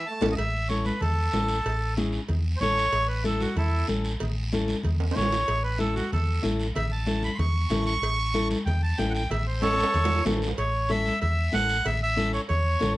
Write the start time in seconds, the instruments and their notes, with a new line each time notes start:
0.07 trombone A3, accordion A5
0.21 fingered electric bass A1, nylon-string guitar C#4 E4 A4, high conga, high timbale, long guiro
0.32 accordion D#5
0.37 fingered electric bass A1, accordion E5, cowbell, long guiro
0.69 nylon-string guitar C#4 E4 A4, accordion C#5, high conga, short guiro
0.85 accordion B4, high conga, short guiro
1.00 fingered electric bass E2, accordion A4, cowbell, low conga, long guiro
1.32 fingered electric bass A1, nylon-string guitar C#4 E4 A4, high conga, low timbale, short guiro
1.48 short guiro
1.65 fingered electric bass A1, cowbell, long guiro
1.97 nylon-string guitar C#4 E4 G#4, high conga, short guiro
2.12 short guiro
2.29 fingered electric bass E2, cowbell, low conga, long guiro
2.56 fingered electric bass A1, accordion C5
2.61 nylon-string guitar C#4 E4 A4, accordion C#5, high conga, low conga, short guiro
2.78 short guiro
2.93 fingered electric bass A1, cowbell, long guiro
3.08 accordion B4
3.24 nylon-string guitar C#4 E4 A4, accordion A4, high conga, short guiro
3.40 accordion F#4, high conga, short guiro
3.56 fingered electric bass E2, accordion E4 A4, cowbell, low conga, long guiro
3.88 fingered electric bass A1, nylon-string guitar C#4 E4 A4, high conga, short guiro
4.04 short guiro
4.20 fingered electric bass A1, cowbell, low conga, long guiro
4.53 nylon-string guitar C#4 E4 A4, high conga, short guiro
4.68 high conga, short guiro
4.83 fingered electric bass E2, cowbell, low conga, long guiro
5.00 high timbale
5.11 nylon-string guitar C#4 E4, accordion C5, high timbale
5.16 fingered electric bass A1, nylon-string guitar A4, accordion C#5, high conga, low conga, short guiro
5.22 low timbale
5.32 low timbale, short guiro
5.48 fingered electric bass A1, cowbell, long guiro
5.64 accordion B4
5.78 nylon-string guitar C#4 E4 A4, accordion A4, high conga, short guiro
5.95 accordion F#4, high conga, short guiro
6.12 fingered electric bass E2, accordion A4, cowbell, low conga, long guiro
6.42 fingered electric bass A1, nylon-string guitar C#4 E4 A4, high conga, short guiro
6.59 short guiro
6.75 fingered electric bass A1, accordion E5, cowbell, low conga, long guiro
6.92 accordion A5
7.06 nylon-string guitar C#4 E4 A4, high conga, short guiro
7.23 accordion B5, high conga, short guiro
7.35 fingered electric bass E2, accordion C6, long guiro
7.39 accordion C#6, cowbell, low conga
7.70 fingered electric bass A1, nylon-string guitar C#4 E4 A4, high conga, low conga, low timbale, short guiro
7.86 accordion C#6, short guiro
8.02 fingered electric bass A1, cowbell, long guiro
8.34 nylon-string guitar C#4 E4 A4, high conga, short guiro
8.50 high conga, short guiro
8.66 fingered electric bass E2, accordion G5, cowbell, low conga, long guiro
8.83 accordion A5
8.98 fingered electric bass A1, nylon-string guitar C#4 E4 A4, accordion G5, high conga, low timbale, short guiro
9.10 accordion F#5
9.15 accordion G5, short guiro
9.30 fingered electric bass A1, accordion E5, cowbell, low conga, long guiro
9.47 accordion C5
9.61 nylon-string guitar C#4 E4 A4, accordion A4 C#5, high conga, high timbale, short guiro
9.73 high timbale
9.79 high conga, short guiro
9.83 high timbale
9.94 fingered electric bass E2, cowbell, low conga, long guiro
10.05 low timbale
10.15 low timbale
10.25 fingered electric bass A1, nylon-string guitar C#4 E4 A4, high conga, low conga, low timbale, short guiro
10.37 low timbale
10.42 short guiro
10.48 low timbale
10.58 fingered electric bass A1, accordion C#5, cowbell, long guiro
10.89 nylon-string guitar C#4 E4 A4, accordion E5, high conga, short guiro
11.06 high conga, short guiro
11.21 fingered electric bass E2, accordion E5, cowbell, low conga, long guiro
11.52 fingered electric bass A1, nylon-string guitar C#4 E4 A4, accordion F#5, high conga, low timbale, short guiro
11.69 short guiro
11.85 fingered electric bass A1, accordion E5, cowbell, low conga, long guiro
12.03 accordion E5
12.16 nylon-string guitar C#4 E4 A4, high conga, short guiro
12.33 accordion C#5, short guiro
12.48 fingered electric bass E2, accordion C#5, cowbell, low conga, long guiro
12.80 fingered electric bass A1, nylon-string guitar C#4 E4 A4, high conga, low conga, low timbale, short guiro